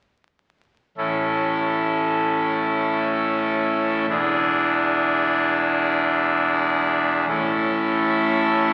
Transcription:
0.97 4.06 A1 medium
0.97 4.06 A2 medium
0.97 4.06 C#4 medium
0.97 4.06 E4 soft
0.97 4.06 A4 medium
4.09 7.26 E1 medium
4.09 7.25 E2 medium
4.09 7.25 D4 medium
4.09 7.25 E4 medium
4.09 7.26 G#4 medium
7.28 8.73 A1 medium
7.28 8.73 A2 medium
7.28 8.73 C#4 soft
7.28 8.73 E4 soft
7.28 8.73 A4 soft
8.08 8.73 E5 loud

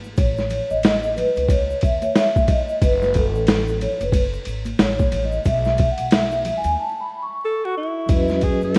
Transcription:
0.04 shaker soft
0.17 0.58 A1 loud
0.17 0.73 C#5 medium
0.17 kick loud
0.17 ride medium
0.17 shaker medium
0.37 snare soft
0.37 shaker soft
0.50 ride medium
0.50 low conga medium
0.50 shaker soft
0.70 1.21 A1 medium
0.70 1.18 D#5 medium
0.70 shaker soft
0.83 snare loud
0.83 hi-hat pedal medium
0.83 ride medium
0.83 shaker medium
1.03 shaker medium
1.17 1.51 B4 medium
1.17 ride soft
1.17 low conga medium
1.17 shaker soft
1.36 1.72 C#2 medium
1.36 ride soft
1.36 shaker soft
1.49 1.84 C#5 loud
1.49 kick loud
1.49 ride medium
1.49 high conga soft
1.49 shaker medium
1.70 shaker soft
1.81 2.08 D#2 medium
1.81 2.04 E5 medium
1.81 kick medium
1.81 ride medium
1.81 shaker soft
2.02 2.09 C#5 medium
2.02 ride soft
2.02 high conga medium
2.02 shaker soft
2.15 2.47 E5 medium
2.15 snare loud
2.15 hi-hat pedal medium
2.15 ride medium
2.15 shaker medium
2.36 kick medium
2.36 high conga medium
2.36 shaker soft
2.48 2.83 D#5 medium
2.48 kick loud
2.48 ride medium
2.48 low conga medium
2.48 shaker soft
2.69 shaker soft
2.82 3.35 F#1 loud
2.82 3.16 B4 medium
2.82 kick loud
2.82 ride medium
2.82 shaker medium
3.02 snare soft
3.02 shaker soft
3.14 3.83 A4 medium
3.14 kick medium
3.14 ride medium
3.14 low conga medium
3.14 shaker soft
3.35 3.85 A1 loud
3.35 shaker soft
3.47 snare loud
3.47 hi-hat pedal medium
3.47 ride medium
3.47 shaker medium
3.68 shaker soft
3.81 4.02 C#5 medium
3.81 ride soft
3.81 low conga medium
3.81 shaker soft
4.00 4.35 F#1 loud
4.00 4.17 B4 medium
4.00 ride soft
4.00 shaker soft
4.12 kick loud
4.12 ride medium
4.12 high conga soft
4.12 shaker medium
4.34 shaker soft
4.45 4.72 G#1 medium
4.45 ride medium
4.45 shaker soft
4.65 ride soft
4.65 high conga medium
4.65 shaker soft
4.79 5.05 A1 loud
4.79 5.25 C#5 medium
4.79 snare loud
4.79 hi-hat pedal medium
4.79 ride medium
4.79 shaker medium
4.99 kick medium
4.99 high conga medium
4.99 shaker soft
5.12 5.38 A1 medium
5.12 ride medium
5.12 low conga medium
5.12 shaker soft
5.25 5.34 D#5 medium
5.32 shaker soft
5.44 5.86 B1 loud
5.44 5.87 E5 medium
5.44 kick loud
5.44 ride medium
5.44 shaker medium
5.64 snare soft
5.64 shaker soft
5.78 kick medium
5.78 ride medium
5.78 high conga soft
5.78 shaker soft
5.91 6.13 F#5 medium
5.98 6.49 B1 medium
5.98 ride soft
5.98 shaker soft
6.11 6.57 E5 medium
6.11 snare loud
6.11 hi-hat pedal medium
6.11 ride medium
6.11 shaker medium
6.31 shaker soft
6.45 ride medium
6.45 low conga medium
6.45 shaker soft
6.57 6.79 G#5 loud
6.64 6.74 D#2 medium
6.64 ride soft
6.64 shaker medium
6.80 6.89 A5 medium
7.00 7.22 B5 medium
7.22 8.06 C#6 loud
7.45 7.66 A4 medium
7.65 7.77 F#4 medium
7.77 8.45 E4 medium
8.06 8.49 E2 loud
8.06 8.79 F#3 medium
8.06 8.79 C#4 medium
8.06 8.79 D#5 soft
8.06 kick loud
8.06 ride medium
8.06 shaker medium
8.10 8.79 F#4 medium
8.10 8.79 B4 medium
8.28 snare soft
8.28 shaker soft
8.41 8.63 G#4 medium
8.41 kick medium
8.41 ride soft
8.41 shaker soft
8.62 8.79 F#2 medium
8.62 8.79 A4 medium
8.62 shaker soft
8.74 hi-hat pedal medium
8.74 ride medium
8.74 shaker medium

